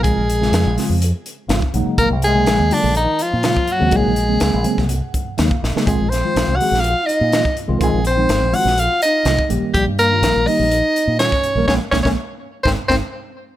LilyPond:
<<
  \new Staff \with { instrumentName = "Soprano saxophone" } { \time 4/4 \key aes \mixolydian \tempo 4 = 124 aes'2 r2 | bes'8 aes'4 d'8 ees'8 f'4 ges'8 | aes'2 r2 | aes'8 c''4 ges''8 f''8 ees''4 r8 |
aes'8 c''4 ges''8 f''8 ees''4 r8 | g'8 bes'4 ees''4. des''4 | des''16 r16 des''16 des''16 r4 c''16 r16 c''16 r4 r16 | }
  \new Staff \with { instrumentName = "Trombone" } { \time 4/4 \key aes \mixolydian aes2 r2 | bes8 aes4 d8 ees8 f4 ges8 | aes2 r2 | aes8 c'4 ges'8 f'8 ees'4 r8 |
aes8 c'4 ges'8 f'8 ees'4 r8 | g8 bes4 ees'4. des'4 | des'16 r16 des'16 des'16 r4 c'16 r16 c'16 r4 r16 | }
  \new Staff \with { instrumentName = "Tine electric piano" } { \time 4/4 \key aes \mixolydian r2. f''8 ges''8 | r1 | r4. aes''8 ges''4 f''8 ees''8 | r1 |
r1 | r1 | <aes bes>16 r16 <aes bes des'>16 <aes bes des'>16 r4 <aes c' ees'>16 r16 <aes c' ees'>16 r4 r16 | }
  \new Staff \with { instrumentName = "Tine electric piano" } { \time 4/4 \key aes \mixolydian <des f aes c' f'>16 r16 f'16 <des f aes c' f'>8 r16 <des f aes c' f'>8 <c' f'>16 r8. <des f aes c' f'>16 <c' ees'>16 <des ges aes bes ees'>8~ | <des ges aes bes ees'>16 r16 <bes des'>16 <des ges aes bes des'>8 r16 <des ges aes bes f'>8 <bes ges'>16 r8. <des ges aes bes des'>16 <bes des'>16 <bes ees'>16 <des ges aes bes c'>16 | <des ges aes bes ees'>8 <bes ges'>16 <des ges aes bes c'>8 r16 <des ges aes bes c'>8 <bes ees'>16 r8. <des ges aes bes ees'>16 <bes f'>16 <bes des'>16 <des ges aes bes ees'>16 | <ees f aes c' f'>8 f'16 <ees f aes c' f'>8 r16 <ees f aes c' aes'>8 <c' aes'>16 r8. <ees f aes c' f'>16 c'16 <c' f'>16 <ees f aes c' f'>16 |
<ees f aes c' f'>8 <c' ees'>16 <ees f aes c' ees'>8 r16 <ees f aes c' f'>8 aes'16 r8. <ees f aes c' f'>16 <c' aes'>16 <ees g bes des' g'>8~ | <ees g bes des' g'>16 r8 <ees g bes des' f'>8 r16 <ees g bes des' g'>8 r4 <ees g bes des' f'>16 <des' g'>16 <des' g'>16 <ees g bes des' bes'>16 | r1 | }
  \new Staff \with { instrumentName = "Fingered electric bass" } { \clef bass \time 4/4 \key aes \mixolydian bes,,16 bes,,8. f,16 bes,,16 r16 f,8 r8. aes,,16 r16 bes,,16 r16 | bes,,16 c,8. bes,,16 ees,16 r16 bes,,8 r8 bes,8 r8 ees,16 | bes,,16 bes,,8. des,16 bes,,16 r16 c,8 r8. ees,16 r16 bes,,16 r16 | bes,,16 bes,,8 r16 bes,,16 c,16 r16 bes,,8 r8 bes,8 r8 c,16 |
bes,,16 bes,,8. aes,,16 bes,,16 r16 bes,,8 r8. c,16 r16 bes,,16 r16 | bes,,16 g,8. bes,,16 bes,,16 r16 bes,,8 r8 bes,8 r8 bes,,16 | bes,,16 r16 bes,,16 bes,,16 r4 aes,,16 r16 aes,,16 r4 r16 | }
  \new DrumStaff \with { instrumentName = "Drums" } \drummode { \time 4/4 <hh bd>8 hh16 sn16 <hh sn>8 <hho sn>8 hh8 hh8 <hh sn>16 bd16 hh8 | <hh bd>8 hh8 <hh sn>8 hho8 hh8 hh8 <hh sn>16 bd16 hh8 | <hh bd>8 hh8 <hh sn>8 hh16 <bd sn>16 hh8 <hh bd>8 <hh sn>16 bd16 sn16 sn16 | <hh bd>8 <hh sn>8 <hh sn>8 hho16 sn16 hh8 hh8 <hh sn>16 bd16 hh8 |
<hh bd>8 hh8 <hh sn>8 hho16 sn16 hh8 hh8 <hh sn>16 bd16 hh8 | <hh bd>8 hh8 <hh sn>8 hho8 hh8 hh8 <hh sn>16 <bd sn>16 hh8 | <bd sn>8 <bd sn>16 <bd sn>16 r4 <bd sn>8 <bd sn>8 r4 | }
>>